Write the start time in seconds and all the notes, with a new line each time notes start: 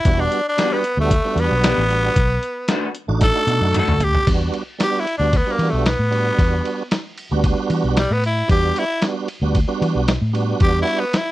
Already playing: E4
0.05 E1 G3 B3 D4 F#4, kick, closed hi-hat
0.21 D4
0.32 closed hi-hat
0.49 D4
0.57 E3 G3 B3 D4 F#4 G4, snare, closed hi-hat
0.73 B3
0.84 closed hi-hat
0.97 D2 G3 A3 B3 D4 F#4
1.11 kick, closed hi-hat
1.25 G3 B3 D4 F#4
1.36 E2, closed hi-hat
1.40 B3
1.51 B1
1.64 E3 B3 D4 G4, snare, closed hi-hat
1.78 A1
1.89 G3 B3 D4 F#4, closed hi-hat
2.16 B1, kick, closed hi-hat
2.43 closed hi-hat
2.68 D#3 A3 D4 F#4, snare, closed hi-hat
2.95 closed hi-hat
3.08 A1 A3 D4 D#4 F#4
3.21 A4, kick, snare, closed hi-hat
3.47 B2, closed hi-hat, high tom
3.61 F#2
3.74 D#3 A3 D4 F#4, closed hi-hat, mid tom
3.78 A4
3.88 D2, mid tom
4.00 G4, closed hi-hat, floor tom
4.15 floor tom
4.27 E2 G3 B3 D4 F#4, kick, crash, ride
4.54 ride
4.78 G3 B3 D4 F#4, snare, ride
4.83 G4
4.99 E4
5.07 ride
5.18 D2 G3 B3 D4 F#4
5.33 B3, kick, ride
5.46 G3 B3 D4 F#4
5.52 A#3
5.59 E3, ride
5.69 B1 A3
5.86 B3, snare, ride
5.99 A2
6.11 G3 B3 D4 F#4, ride
6.39 E2, kick, ride
6.65 ride
6.91 snare, ride
7.18 ride
7.31 D2 G3 B3 D4 F#4
7.44 kick, ride
7.70 E3, ride
7.84 B1
7.97 G3, snare, ride
8.11 A2 B3
8.24 E4, ride
8.48 E2 G3 B3 D4 F#4 G4, kick, ride
8.76 E4, ride
9.01 G3 B3 D4 F#4, snare, ride
9.28 ride
9.42 D2 G3 B3 D4 F#4
9.55 kick, ride
9.68 G3 B3 D4 F#4
9.82 E3, ride
9.95 B1
10.08 snare, ride
10.21 A2
10.33 G3 B3 D4 F#4, ride
10.60 E2 G4, kick, ride
10.82 E4
10.87 ride
11.00 B3
11.13 E4, snare, ride